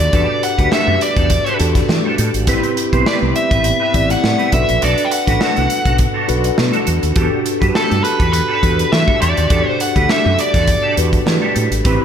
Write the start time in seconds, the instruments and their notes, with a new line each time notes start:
Already playing: tine electric piano D4 F#4 G4 A4, lead electric guitar D5
0.00 muted clean electric guitar stroke, closed hi-hat
0.13 fretless electric bass E2, clean electric guitar D4 G4 A4, tine electric piano D4 F#4 G4 B4, kick, closed hi-hat
0.29 muted clean electric guitar stroke
0.43 lead electric guitar F#5, muted clean electric guitar stroke, closed hi-hat
0.58 fretless electric bass D2, tine electric piano D4 F#4 G4 B4, clean electric guitar D4 G4 B4, kick, closed hi-hat
0.71 clean electric guitar D4 G4 A4, lead electric guitar E5, snare
0.87 fretless electric bass F#2, muted clean electric guitar stroke
1.01 lead electric guitar D5, muted clean electric guitar stroke, closed hi-hat
1.17 fretless electric bass E2, clean electric guitar D4 G4 A4, kick, closed hi-hat
1.30 muted clean electric guitar stroke, kick, closed hi-hat
1.46 clean electric guitar D4 G4 A4, closed hi-hat
1.59 fretless electric bass E2, tine electric piano D4 F#4 G4 A4, muted clean electric guitar stroke, closed hi-hat
1.75 muted clean electric guitar stroke, kick, snare, closed hi-hat
1.88 fretless electric bass E3, muted clean electric guitar stroke, snare
2.05 clean electric guitar D4 G4 A4
2.18 fretless electric bass A2, muted clean electric guitar stroke, closed hi-hat
2.34 fretless electric bass G#1, muted clean electric guitar stroke, closed hi-hat
2.47 fretless electric bass A1, tine electric piano C4 E4 G4 B4, clean electric guitar C4 G4 B4, kick, closed hi-hat
2.63 muted clean electric guitar stroke, closed hi-hat
2.77 muted clean electric guitar stroke, closed hi-hat
2.93 fretless electric bass B1, tine electric piano B3 E4 G4 B4, clean electric guitar C4 G4 C5, kick, closed hi-hat
2.99 tine electric piano C4
3.05 clean electric guitar C4 G4 B4, lead electric guitar D5, snare
3.21 fretless electric bass C2, muted clean electric guitar stroke
3.35 lead electric guitar E5, muted clean electric guitar stroke, closed hi-hat
3.50 fretless electric bass A1, clean electric guitar C4 G4 B4, kick, closed hi-hat
3.64 muted clean electric guitar stroke, closed hi-hat
3.80 clean electric guitar C4 G4 B4
3.94 fretless electric bass A1, tine electric piano C4 E4 G4 D5, muted clean electric guitar stroke, kick, closed hi-hat
4.10 lead electric guitar F#5, muted clean electric guitar stroke, snare, closed hi-hat
4.22 fretless electric bass A2, muted clean electric guitar stroke, snare
4.38 clean electric guitar C4 G4 B4, closed hi-hat
4.52 fretless electric bass B1, tine electric piano D4 F#4 A4 B4, lead electric guitar E5, muted clean electric guitar stroke, kick, closed hi-hat
4.68 fretless electric bass A#1, muted clean electric guitar stroke, closed hi-hat
4.81 fretless electric bass B1, clean electric guitar D4 F#4 A4, lead electric guitar D5, closed hi-hat
4.98 muted clean electric guitar stroke, closed hi-hat
5.05 lead electric guitar G5
5.11 lead electric guitar F#5, muted clean electric guitar stroke, closed hi-hat
5.26 fretless electric bass A1, tine electric piano D4 F#4 A4 B4, clean electric guitar D4 F#4 B4, kick, closed hi-hat
5.40 clean electric guitar D4 F#4 A4, snare
5.56 fretless electric bass C2, muted clean electric guitar stroke, closed hi-hat
5.70 muted clean electric guitar stroke, closed hi-hat
5.85 fretless electric bass B1, clean electric guitar D4 F#4 A4, kick, closed hi-hat
5.98 muted clean electric guitar stroke, kick, closed hi-hat
6.14 clean electric guitar D4 F#4 A4
6.28 fretless electric bass B1, tine electric piano D4 F#4 A4 B4, muted clean electric guitar stroke, closed hi-hat
6.44 muted clean electric guitar stroke, closed hi-hat
6.57 fretless electric bass B2, muted clean electric guitar stroke, snare
6.73 clean electric guitar D4 F#4 A4, closed hi-hat
6.86 fretless electric bass E2, muted clean electric guitar stroke, closed hi-hat
7.02 fretless electric bass D#2, muted clean electric guitar stroke, closed hi-hat
7.15 fretless electric bass E2, tine electric piano D4 F#4 G4 A4, clean electric guitar D4 G4 A4, kick, closed hi-hat
7.31 muted clean electric guitar stroke
7.45 muted clean electric guitar stroke, closed hi-hat
7.61 fretless electric bass F#2, tine electric piano D4 F#4 G4 A4, clean electric guitar D4 G4 B4, kick, closed hi-hat
7.69 tine electric piano B4
7.75 clean electric guitar D4 G4 A4, lead electric guitar A4, snare
7.90 fretless electric bass G2, muted clean electric guitar stroke, closed hi-hat
8.03 lead electric guitar B4, muted clean electric guitar stroke, closed hi-hat
8.19 fretless electric bass E2, clean electric guitar D4 G4 A4, kick, closed hi-hat
8.33 lead electric guitar B4, muted clean electric guitar stroke, closed hi-hat
8.48 clean electric guitar D4 G4 A4
8.62 fretless electric bass E2, tine electric piano D4 F#4 G4 A4, muted clean electric guitar stroke, kick, closed hi-hat
8.78 muted clean electric guitar stroke, closed hi-hat
8.92 fretless electric bass E3, lead electric guitar E5, muted clean electric guitar stroke, snare
9.07 clean electric guitar D4 G4 A4, kick
9.20 fretless electric bass E2, clean electric guitar D4 G4 A4, lead electric guitar D5, closed hi-hat
9.37 fretless electric bass D#2, muted clean electric guitar stroke, closed hi-hat
9.49 fretless electric bass E2, tine electric piano D4 F#4 G4 A4, clean electric guitar D4 G4 A4, kick, closed hi-hat
9.66 lead electric guitar C5, muted clean electric guitar stroke
9.80 lead electric guitar F#5, muted clean electric guitar stroke, closed hi-hat
9.95 fretless electric bass D2, tine electric piano D4 F#4 G4 A4, clean electric guitar D4 G4 B4, kick, closed hi-hat
10.09 clean electric guitar D4 G4 A4, lead electric guitar E5, snare
10.25 fretless electric bass F#2, muted clean electric guitar stroke
10.38 lead electric guitar D5, muted clean electric guitar stroke, closed hi-hat
10.54 fretless electric bass E2, clean electric guitar D4 G4 A4, kick, snare, closed hi-hat
10.67 muted clean electric guitar stroke, kick, closed hi-hat
10.83 clean electric guitar D4 G4 A4
10.96 fretless electric bass E2, tine electric piano D4 F#4 G4 B4, muted clean electric guitar stroke, closed hi-hat
11.13 muted clean electric guitar stroke, kick, closed hi-hat
11.26 fretless electric bass E3, muted clean electric guitar stroke, snare
11.42 clean electric guitar D4 G4 A4
11.55 fretless electric bass A2, muted clean electric guitar stroke, closed hi-hat
11.71 fretless electric bass G#1, muted clean electric guitar stroke, closed hi-hat
11.84 fretless electric bass A1, clean electric guitar C4 G4 B4, tine electric piano C4 E4 G4 B4, kick, closed hi-hat
12.01 muted clean electric guitar stroke